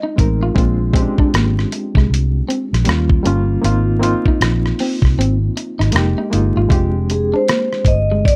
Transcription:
Already playing: vibraphone D#5
0.03 clean electric guitar D#4
0.16 fingered electric bass A1, reed electric piano G#3 C4 D#4, muted clean electric guitar stroke, kick, closed hi-hat
0.20 reed electric piano A#4
0.43 clean electric guitar F4
0.54 fingered electric bass A#1, reed electric piano G#3 C4 D4 F4, clean electric guitar A#3, kick, closed hi-hat
0.93 reed electric piano G#3 C4 C#4 G4, muted clean electric guitar stroke, kick, closed hi-hat
1.02 reed electric piano D4
1.18 clean electric guitar D4, kick
1.34 fingered electric bass G#1, clean electric guitar A#3, cross-stick, closed hi-hat
1.59 cross-stick
1.72 muted clean electric guitar stroke, closed hi-hat
1.95 fingered electric bass C2, clean electric guitar G#3, kick, cross-stick
2.10 fingered electric bass C2, closed hi-hat
2.49 clean electric guitar C4, closed hi-hat
2.73 fingered electric bass A#1, cross-stick, closed hi-hat
2.85 fingered electric bass D#2, reed electric piano G3 A#3 C#4, closed hi-hat
2.89 reed electric piano F4, cross-stick
3.10 kick
3.23 fingered electric bass G1, reed electric piano G3 A#3 C#4 F4, clean electric guitar C#4, closed hi-hat
3.61 fingered electric bass G#1, reed electric piano A#3 C4 D#4 F4, clean electric guitar F4, closed hi-hat
3.99 reed electric piano A#3 C4 D#4 F4, closed hi-hat
4.04 muted clean electric guitar stroke
4.26 clean electric guitar D#4, kick
4.41 fingered electric bass A#1, cross-stick, closed hi-hat
4.66 cross-stick
4.79 clean electric guitar C4, open hi-hat
5.02 fingered electric bass C2, kick, cross-stick
5.18 fingered electric bass G#1, clean electric guitar C4, closed hi-hat
5.57 muted clean electric guitar stroke, closed hi-hat
5.79 fingered electric bass G#1, clean electric guitar D#4, cross-stick, closed hi-hat
5.91 fingered electric bass F1, reed electric piano G#3 A#3 D#4, closed hi-hat
5.96 reed electric piano G4, cross-stick
6.18 clean electric guitar D#4
6.30 fingered electric bass G1, reed electric piano G#3 A#3 D#4, muted clean electric guitar stroke, closed hi-hat
6.34 reed electric piano F4
6.56 fingered electric bass G#1, clean electric guitar F4
6.69 fingered electric bass F1, reed electric piano G#3 C4 D4 G4, clean electric guitar F4, kick, closed hi-hat
7.10 vibraphone G#4, muted clean electric guitar stroke, closed hi-hat
7.34 clean electric guitar D4, vibraphone C5
7.48 clean electric guitar A#3, cross-stick, closed hi-hat
7.73 cross-stick
7.85 fingered electric bass G1, vibraphone D#5, muted clean electric guitar stroke, kick, closed hi-hat
8.12 clean electric guitar G#3
8.25 vibraphone D5, kick, closed hi-hat

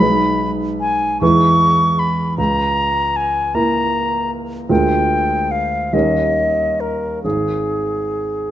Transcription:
Already playing: flute B5
0.00 grand piano B1 G#3 D#4 B4
0.81 flute G#5
1.21 grand piano E2 G#3 E4 B4, flute C#6
1.99 flute B5
2.38 grand piano C#2, flute A#5
3.16 flute G#5
3.55 grand piano A#3 E4 A#4, flute A#5
4.69 grand piano D2 G#3 F4 A#4, flute G5
5.51 flute F5
5.93 grand piano D#2 G3 C#4 A#4, flute D#5
6.80 flute A#4
7.24 grand piano G#1, flute G#4

